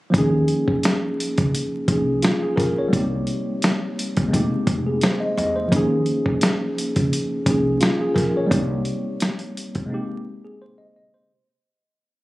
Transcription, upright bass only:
0.14 D#2
1.38 C#2
1.88 C2
2.57 A#1
2.93 C2
4.17 C2
4.33 F1
4.52 muted upright bass stroke
4.67 F1
5.37 E2
5.72 D#2
6.96 C#2
7.46 C2
8.16 A#1
8.51 C2
9.75 C2

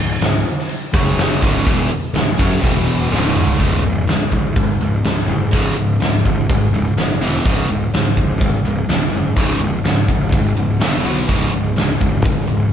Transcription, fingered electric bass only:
Already playing: C#1
0.21 C#1
0.94 F#1
1.43 C#1
1.66 E1
2.13 C#1
2.39 F#1
2.63 E1
3.11 C#1
3.60 C#1
3.83 C#1
4.07 C#1
4.32 C#1
4.56 G#1
4.81 C#1
5.05 C#1
5.29 F#1
5.53 C#1
5.77 C#1
6.01 C#1
6.25 C#1
6.50 G#1
6.72 C#1
6.96 F#1
7.21 E1
7.46 C#1
7.68 C#1
7.92 C#1
8.17 C#1
8.41 G#1
8.63 C#1
8.88 C#1
9.11 F#1
9.37 C#1
9.60 C#1
9.83 C#1
10.08 C#1
10.32 G#1
10.57 C#1
10.81 E1
11.05 B1
11.29 C#1
11.53 C#1
11.76 C#1
12.01 C#1
12.25 G#1
12.50 C#1

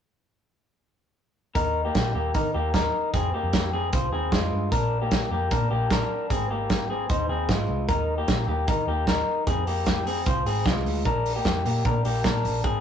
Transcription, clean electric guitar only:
1.55 D#4 A#4
1.85 A#3 G4
2.15 A#3 G4
2.34 D#4 A#4
2.54 A#3 G4
2.74 D#4 A#4
3.14 C4 G#4
3.34 A#3 G4
3.73 C4 G#4
3.93 F4 C5
4.13 C4 G#4
4.32 G#3 F4
4.72 D4 A#4
5.02 A#3 G4
5.32 A#3 G4
5.51 D4 A#4
5.71 A#3 G4
5.91 D4 A#4
6.31 C4 G#4
6.51 A#3 G4
6.90 C4 G#4
7.09 D#4 C5
7.29 C4 G#4
7.49 G#3 F4
7.89 D#4 A#4
8.18 A#3 G4
8.48 A#3 G4
8.68 D#4 A#4
8.88 A#3 G4
9.08 D#4 A#4
9.47 C4 G#4
9.67 A#3 G4
10.07 C4 G#4
10.26 F4 C5
10.46 C4 G#4
10.66 G#3 F4
11.06 D4 A#4
11.36 A#3 G4
11.66 A#3 G4
11.86 D4 A#4
12.05 A#3 G4
12.25 D4 A#4
12.64 C4 G#4

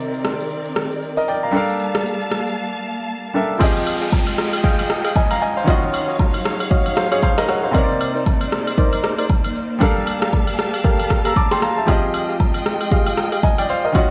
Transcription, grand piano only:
Already playing: C3 C4 D#4 A#4 D5
1.17 A#4 D#5
1.28 D5 G5
1.43 F5 A#5
1.51 G3 D4 A4
1.55 A#4 F5
3.34 G3 D4 A4 A#4 E5
3.58 F3 C4 G4
3.62 G#4 D#5
5.16 D#5 G#5
5.31 F5 A#5
5.42 D#5 G#5
5.57 C5 F5
5.64 D#3 C#4 F4
5.69 F#4 D#5
6.97 C5 F5
7.12 G#4 C#5
7.22 C5 F5
7.38 A#4 D#5
7.48 C#5 F#5
7.63 C5 F5
7.71 C3 C4 D#4
7.76 A#4 C#5
7.84 D5
9.79 G3 D4 A4
9.83 A#4 F5
11.26 A#5 E6
11.37 A5 D6
11.51 G5 C6
11.62 F5 A#5
11.77 E5 A5
11.85 F3 C4 G4
11.90 G#4 D#5
13.43 D#5 G#5
13.58 D5 G5
13.69 C5 F5
13.85 A#4 D#5
13.92 D#3 C#4 F4
13.97 F#4 D#5

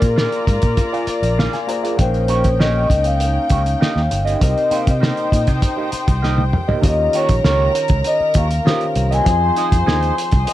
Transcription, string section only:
Already playing: F4 D5 A#5
1.99 C#4 D#4 G5
4.42 D#4 C5 G5
6.84 A#4 A#5
9.26 C5 C6
10.47 D#5 D#6

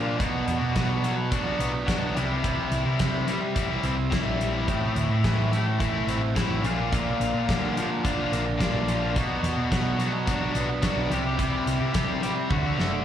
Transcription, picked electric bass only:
Already playing: A#2
0.20 B1
0.47 E2
0.62 B2
1.59 B1
2.01 B1
2.16 C2
2.72 C2
2.86 C3
3.84 C2
4.26 A#1
4.68 A1
4.95 D2
5.09 A2
6.07 A1
6.49 A1
6.63 A#1
7.20 A#1
7.34 A#2
8.32 A#1
8.73 A#1
9.16 B1
9.43 E2
9.56 B2
10.55 B1
10.96 B1
11.10 C2
11.67 C2
11.81 C3
12.51 D2
12.79 F#1

